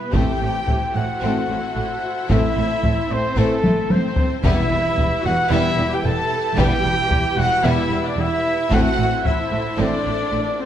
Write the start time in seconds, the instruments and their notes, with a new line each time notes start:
Already playing: viola section B3, trumpet section B4, violin section B4
0.12 double bass section A1, cello section A2, trombone section E3 A3, violin section A3 C4 G5, french horn section C4 E4, string section E4 A4 C5 E5, viola section G4, trumpet section G5, taiko
0.41 double bass section A1, cello section A2, violin section A3
0.67 double bass section A1, cello section A2, violin section A3, taiko low
0.93 double bass section A1, cello section A2, violin section A3 F#5, viola section F#4, trumpet section F#5
1.21 double bass section A1, cello section A2, trombone section E3 A3, violin section A3 C4, french horn section C4 E4
1.49 double bass section A1, cello section A2, violin section A3
1.75 double bass section A1, cello section A2, violin section A3
2.28 double bass section A1, cello section A2, trombone section E3 A3, violin section A3 C4 E5, french horn section C4 E4, viola section E4, trumpet section E5, taiko
2.56 double bass section A1, cello section A2, violin section A3
2.83 double bass section A1, cello section A2, violin section A3, taiko low
3.09 double bass section A1, cello section A2, violin section A3 C5, viola section C4, trumpet section C5
3.36 double bass section A1, cello section A2, trombone section E3 A3, viola section A3, violin section A3 C4 A4, french horn section C4 E4, trumpet section A4
3.63 double bass section A1, cello section A2, violin section A3, taiko high
3.90 double bass section A1, cello section A2, violin section A3 C5, viola section C4, trumpet section C5, taiko high
4.16 taiko low
4.43 double bass section E1, timpani E2, cello section E2, trombone section E3 G3, violin section G3 B3 E5, french horn section B3 E4, viola section E4, string section E4 G4 B4 E5, trumpet section E5, taiko
4.70 double bass section E1, cello section E2, violin section G3
4.98 double bass section E1, cello section E2, violin section G3, taiko low
5.23 double bass section E1, cello section E2, violin section G3 F#5, viola section F#4, trumpet section F#5
5.49 double bass section E1, cello section E2, trombone section E3 G3, violin section G3 B3 E5, french horn section B3 E4, viola section E4, trumpet section E5
5.78 double bass section E1, cello section E2, violin section G3
5.90 viola section G4, violin section G5, trumpet section G5
6.02 double bass section E1, cello section E2, violin section G3 A5, viola section A4, trumpet section A5
6.56 double bass section E1, cello section E2, trombone section E3 G3, violin section G3 B3 G5, french horn section B3 E4, viola section G4, trumpet section G5, taiko
6.83 double bass section E1, cello section E2, violin section G3
7.09 double bass section E1, cello section E2, violin section G3, taiko low
7.36 double bass section E1, cello section E2, violin section G3 F#5, viola section F#4, trumpet section F#5
7.63 double bass section E1, cello section E2, trombone section E3 G3, violin section G3 B3 E5, french horn section B3 E4, viola section E4, trumpet section E5
7.91 double bass section E1, cello section E2, violin section G3
8.04 viola section D4, violin section D5, trumpet section D5
8.17 double bass section E1, cello section E2, violin section G3 E5, viola section E4, trumpet section E5
8.70 double bass section A1, cello section A2, trombone section E3 A3, violin section A3 C4 F#5, french horn section C4 E4, viola section F#4, string section A4 C5, trumpet section F#5, taiko
8.98 double bass section A1, cello section A2, violin section A3
9.24 double bass section A1, cello section A2, violin section A3 E5, viola section E4, trumpet section E5, taiko low
9.50 double bass section A1, cello section A2, violin section A3
9.77 double bass section A1, cello section A2, trombone section E3 A3, violin section A3 C4 D5, french horn section C4 E4, viola section D4, trumpet section D5
10.05 double bass section A1, cello section A2, violin section A3
10.31 double bass section A1, cello section A2, violin section A3
10.59 viola section C4, violin section C5, trumpet section C5